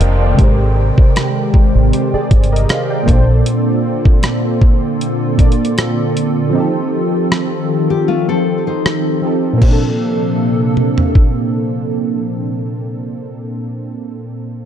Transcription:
Already playing: synth keys D#3 A#3 F4 G4 C5 D5 F5 G5 A5 C6, analog synth pad D#3 A#3 D4 G5, downlifter
0.00 fingered electric bass F1, synth keys A#4 D#5, closed hi-hat
0.21 synth keys A4 D5
0.34 synth keys C3 G#3
0.38 fingered electric bass G#1, analog synth pad G#3 C4, synth keys G4 A#4, kick, closed hi-hat
0.44 synth keys C5
0.98 kick
1.16 cross-stick, closed hi-hat
1.54 muted fingered electric bass stroke, kick
1.75 fingered electric bass G#1
1.93 synth keys G4 C5, closed hi-hat
2.13 synth keys G#4 D5, muted fingered electric bass stroke
2.31 fingered electric bass G1, kick, closed hi-hat
2.44 closed hi-hat
2.52 synth keys A#4 D#5, closed hi-hat
2.69 synth keys C5 F5, cross-stick, closed hi-hat
2.90 synth keys D5 G5
3.03 synth keys A#2 A#3
3.08 fingered electric bass A#1, analog synth pad D3 A#3 F4 A4, synth keys D4 A4, kick, closed hi-hat
3.13 synth keys C5
3.46 closed hi-hat
4.05 kick
4.23 cross-stick, closed hi-hat
4.61 kick
5.01 closed hi-hat
5.37 synth keys A#2 A#3 D4 A4, kick, closed hi-hat
5.42 synth keys D5
5.52 closed hi-hat
5.65 closed hi-hat
5.78 cross-stick, closed hi-hat
6.17 closed hi-hat
6.50 analog synth pad D#3 F3, synth keys F3 C4
6.55 synth keys D#4 G4
6.60 synth keys A4
7.32 cross-stick
7.90 nylon-string guitar G4
8.08 nylon-string guitar A3 F4
8.29 nylon-string guitar C4 A4
8.67 nylon-string guitar D#4 C5
8.86 cross-stick
9.22 synth keys F3 C4 D#4 G4
9.27 synth keys A4
9.53 synth keys A#2
9.58 analog synth pad C3 F3 A#3 D4 A4, synth keys A#3, kick, crash
9.63 synth keys C4
9.68 synth keys D4
9.73 synth keys A4
10.77 mid tom
10.98 floor tom
11.15 kick

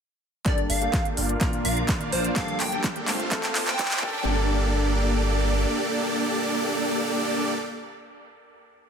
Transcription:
0.45 grand piano G2 A#3 D4 G4 A4, supersaw synth A#3 D4 G4 A4 D5, digital synth lead D5, kick, clap, closed hi-hat, riser
0.58 closed hi-hat
0.70 sub bass G1, digital synth lead F5, open hi-hat
0.82 supersaw synth A#3 D4 G4 A4 G5, closed hi-hat
0.94 kick, clap, closed hi-hat
1.05 closed hi-hat
1.17 sub bass G1, supersaw synth A#3 D4 F4 D5 F5, open hi-hat
1.29 closed hi-hat
1.40 grand piano A#2 A#3 D4 F4 A#4, kick, clap, closed hi-hat
1.53 closed hi-hat
1.65 sub bass A#1, supersaw synth A#3 D4 F4 D5 A#5, digital synth lead F5, open hi-hat
1.77 closed hi-hat
1.89 kick, clap, closed hi-hat
2.01 supersaw synth A#3 D4 F4 D5 F5, closed hi-hat
2.12 sub bass A#1, digital synth lead C5, open hi-hat
2.24 closed hi-hat
2.35 grand piano G2 A#3 D4 G4 A4, supersaw synth A#3 G4, digital synth lead F5, kick, clap, closed hi-hat
2.48 closed hi-hat
2.60 sub bass G1, digital synth lead G5, clap, open hi-hat
2.72 supersaw synth A#3 D4 G4 A4 G5, closed hi-hat
2.84 kick, clap, closed hi-hat
2.96 closed hi-hat
3.08 sub bass G1, supersaw synth A3 C4 F4 C5 F5, clap, open hi-hat
3.20 closed hi-hat
3.30 grand piano A3 C4 F4 A4, kick, clap, closed hi-hat
3.44 clap, closed hi-hat
3.55 sub bass F1, supersaw synth A3 C4 F4 C5 A5, clap, open hi-hat
3.67 digital synth lead G5, clap, closed hi-hat
3.79 kick, clap, closed hi-hat
3.85 clap
3.91 supersaw synth A3 C4 F4 C5 F5, clap, closed hi-hat
3.97 clap
4.01 sub bass G1, grand piano A#3 D4 G4 A4, supersaw synth A#3 D4 G4 A4 D5, kick

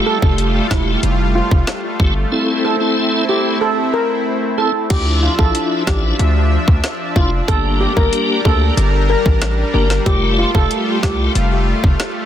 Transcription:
Already playing: analog synth pad G3 A3 F4, tonewheel organ A3 F4 G4
0.06 steel pan A4
0.22 808-style bass F1, tonewheel organ A3 F4 G4, kick
0.38 closed hi-hat
0.70 808-style bass E1, tonewheel organ A3 F4 G4, steel pan E4, kick, cross-stick, snare
1.03 808-style bass F1, closed hi-hat
1.35 steel pan F4
1.51 808-style bass F1, kick
1.67 cross-stick, snare, closed hi-hat
2.00 808-style bass G1, tonewheel organ A3 F4 G4, kick
2.32 tonewheel organ C4 E4 A4, analog synth pad C4 E4
2.65 steel pan A4
2.80 tonewheel organ C4 E4 A4
3.29 tonewheel organ C4 E4 A4, steel pan G4
3.61 steel pan A4
3.94 steel pan A#4
4.58 tonewheel organ C4 E4 A4, steel pan A4
4.90 808-style bass D2, analog synth pad F3 D4 E5, tonewheel organ D4 E4 F4, steel pan G4, kick, closed hi-hat, crash
5.23 steel pan F4
5.38 808-style bass A#1, tonewheel organ D4 E4 F4, steel pan A4, kick
5.55 closed hi-hat
5.87 808-style bass A1, tonewheel organ D4 E4 F4, steel pan G4, kick, cross-stick, snare
6.19 808-style bass D2, closed hi-hat
6.68 808-style bass D2, kick
6.84 cross-stick, snare, closed hi-hat
7.16 808-style bass F1, tonewheel organ D4 E4 F4, steel pan F4, kick
7.48 808-style bass G1, analog synth pad G3 A#4, tonewheel organ A#3 D4 G4, steel pan A4, kick, closed hi-hat
7.80 steel pan G4
7.96 808-style bass G1, tonewheel organ A#3 D4 G4, steel pan A#4, kick
8.13 closed hi-hat
8.45 808-style bass D2, tonewheel organ A#3 D4 G4, steel pan A4, kick
8.77 808-style bass G1, closed hi-hat
9.09 steel pan A#4
9.26 808-style bass A1, kick
9.42 cross-stick, snare, closed hi-hat
9.74 808-style bass G1, tonewheel organ A#3 D4 G4, steel pan A#4
9.90 snare
10.06 808-style bass F1, tonewheel organ A3 F4 G4, analog synth pad A3 F4, steel pan G4, kick, closed hi-hat
10.39 steel pan F4
10.54 808-style bass F1, tonewheel organ A3 F4 G4, steel pan A4, kick
10.71 closed hi-hat
11.03 808-style bass C2, tonewheel organ A3 F4 G4, steel pan G4, kick, cross-stick, snare
11.35 808-style bass F1, closed hi-hat
11.84 808-style bass F1, kick
12.00 cross-stick, snare, closed hi-hat

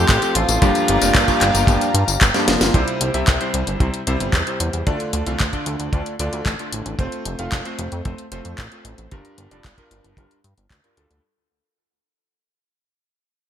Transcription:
Already playing: electric grand piano F3 A3 C4 A4, analog synth pad A4 C5 F5 C6
0.09 analog synth bass A1, alto saxophone G4, kick, clap, closed hi-hat, tambourine
0.22 electric grand piano F3 A3 C4 A4, closed hi-hat, tambourine
0.35 analog synth bass A1, alto saxophone F4, closed hi-hat
0.49 analog synth bass A1, closed hi-hat, tambourine
0.62 analog synth bass G1, electric grand piano G2 F3 A#3 D4 G4, analog synth pad G4 D5 F5 A#5, kick, closed hi-hat, tambourine
0.75 closed hi-hat, tambourine
0.88 analog synth bass G1, closed hi-hat
1.02 analog synth bass F1, electric grand piano G2 F3 A#3 D4 A#4, closed hi-hat, tambourine
1.15 analog synth bass G1, kick, clap, closed hi-hat, tambourine
1.28 electric grand piano G2 F3 A#3 D4 G4, kick, closed hi-hat, tambourine
1.41 analog synth bass G1, clap, closed hi-hat
1.55 analog synth bass G1, closed hi-hat, tambourine
1.67 analog synth bass G1, electric grand piano G2 F3 A#3 D4 G4, kick, closed hi-hat, tambourine
1.81 closed hi-hat, tambourine
1.94 analog synth bass G2, closed hi-hat
2.08 analog synth bass G1, closed hi-hat, tambourine
2.21 analog synth bass G1, kick, clap, closed hi-hat, tambourine
2.34 electric grand piano G2 F3 A#3 D4 G4, snare, closed hi-hat, tambourine
2.47 analog synth bass F1, electric grand piano F3 A#3 D4 F4, snare, closed hi-hat
2.61 analog synth bass G1, snare, closed hi-hat, tambourine
2.74 analog synth bass C2, electric grand piano C3 G3 C4 E4 C5, kick, closed hi-hat
2.88 closed hi-hat
3.01 analog synth bass C2, closed hi-hat
3.14 analog synth bass C2, electric grand piano C3 G3 C4 E4 E5, closed hi-hat
3.27 analog synth bass C2, kick, clap, closed hi-hat
3.41 electric grand piano C3 G3 C4 E4 C5, closed hi-hat
3.54 analog synth bass C2, closed hi-hat
3.67 analog synth bass G1, closed hi-hat
3.80 analog synth bass C2, electric grand piano C3 G3 C4 E4 C5, kick, closed hi-hat
3.94 closed hi-hat
4.07 analog synth bass C2, electric grand piano C3 G3 C4 E4 C5, closed hi-hat
4.20 analog synth bass G1, closed hi-hat
4.33 analog synth bass E2, kick, clap, closed hi-hat
4.47 electric grand piano C3 G3 C4 E4 C5, closed hi-hat
4.60 analog synth bass E2, closed hi-hat
4.73 analog synth bass E2, closed hi-hat
4.87 analog synth bass D2, electric grand piano D3 A3 D4 F4 D5, kick, closed hi-hat
5.00 closed hi-hat
5.13 analog synth bass D2, closed hi-hat
5.26 analog synth bass C2, electric grand piano D3 A3 D4 F4 F5, closed hi-hat
5.40 analog synth bass D2, kick, clap, closed hi-hat
5.53 electric grand piano D3 A3 D4 F4 D5, kick, closed hi-hat
5.66 analog synth bass D2, closed hi-hat
5.80 analog synth bass D2, closed hi-hat
5.93 analog synth bass D2, electric grand piano D3 A3 D4 F4 D5, kick, closed hi-hat
6.06 closed hi-hat
6.19 analog synth bass D2, electric grand piano D3 A3 D4 F4 D5, closed hi-hat
6.33 analog synth bass D2, closed hi-hat
6.46 analog synth bass A1, kick, clap, closed hi-hat
6.59 electric grand piano D3 A3 D4 F4 D5, closed hi-hat
6.73 analog synth bass A1, closed hi-hat
6.86 analog synth bass A1, closed hi-hat
6.99 analog synth bass F1, electric grand piano A3 C4 F4 C5, kick, closed hi-hat
7.12 closed hi-hat
7.25 analog synth bass F1, closed hi-hat
7.39 analog synth bass F1, electric grand piano A3 C4 F4 F5, closed hi-hat
7.52 analog synth bass F1, kick, clap, closed hi-hat
7.65 electric grand piano A3 C4 F4 C5, closed hi-hat
7.79 analog synth bass F1, closed hi-hat
7.92 analog synth bass F2, closed hi-hat
8.05 analog synth bass F1, electric grand piano A3 C4 F4 C5, kick, closed hi-hat
8.18 closed hi-hat
8.32 analog synth bass F1, electric grand piano A3 C4 F4 C5, closed hi-hat
8.45 analog synth bass F2, closed hi-hat
8.58 analog synth bass A1, kick, clap, closed hi-hat
8.72 electric grand piano A3 C4 F4 C5, closed hi-hat
8.85 analog synth bass A1, closed hi-hat
8.98 analog synth bass A1, closed hi-hat
9.11 analog synth bass G1, electric grand piano G2 G3 D4 F4 A#4, kick, closed hi-hat
9.25 closed hi-hat
9.38 analog synth bass G1, closed hi-hat
9.51 analog synth bass F1, electric grand piano G2 G3 D4 F4 D5, closed hi-hat
9.65 analog synth bass G1, kick, clap, closed hi-hat
9.78 electric grand piano G2 G3 D4 F4 A#4, kick, closed hi-hat
9.91 analog synth bass G1, closed hi-hat
10.04 analog synth bass G1, closed hi-hat
10.17 analog synth bass G1, electric grand piano G2 G3 D4 F4 A#4, kick, closed hi-hat
10.31 closed hi-hat
10.44 analog synth bass G2, closed hi-hat
10.58 analog synth bass G1, closed hi-hat
10.70 analog synth bass D2, kick, clap, closed hi-hat
10.84 electric grand piano G2 G3 D4 F4 A#4, closed hi-hat
10.97 analog synth bass D2, electric grand piano G2 G3 D4 F4 A4, closed hi-hat
11.11 analog synth bass D2, closed hi-hat

